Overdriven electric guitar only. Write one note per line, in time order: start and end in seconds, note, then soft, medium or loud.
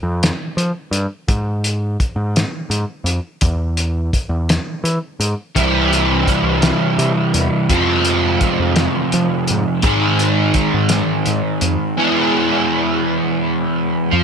5.55 7.67 C3 medium
5.55 7.67 E3 medium
5.55 7.67 G3 medium
5.55 7.72 C4 medium
5.55 7.68 E4 medium
7.70 9.81 F2 medium
7.70 9.82 C3 medium
7.70 9.82 F3 medium
7.70 9.84 G#3 medium
7.70 9.82 C4 loud
7.70 9.83 F4 medium
9.83 11.95 G#2 medium
9.83 11.95 D#3 medium
9.83 11.96 G#3 medium
9.83 11.96 C4 medium
9.83 11.96 D#4 loud
9.83 11.96 G#4 medium
11.97 14.09 E2 medium
11.97 14.09 E3 medium
11.97 14.10 G#3 medium
11.97 14.10 B3 medium
11.97 14.10 E4 loud
11.97 14.10 G#4 medium
14.12 14.23 F3 medium